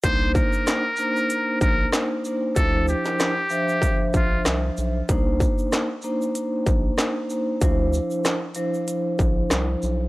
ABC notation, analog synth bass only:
X:1
M:4/4
L:1/16
Q:"Swing 16ths" 1/4=95
K:Dphr
V:1 name="Analog synth bass" clef=bass
C,,3 z6 z B,,,2 z4 | D,,3 z6 z B,,,2 C,,2 =B,,,2 | C,,3 z6 z B,,,2 z4 | D,,3 z6 z B,,,2 C,,2 =B,,,2 |]